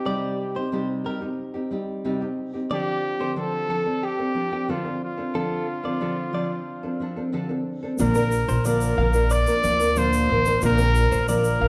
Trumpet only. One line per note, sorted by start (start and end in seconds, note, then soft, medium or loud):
0.00 0.69 G4 medium
2.72 3.34 G4 loud
3.39 4.06 A4 medium
4.05 4.72 G4 medium
4.70 5.03 F4 medium
5.04 7.30 F4 medium
8.01 8.62 A#4 medium
8.67 9.34 A#4 medium
9.32 9.99 D5 loud
9.98 10.63 C5 loud
10.64 11.25 A#4 loud
11.29 11.68 A#4 medium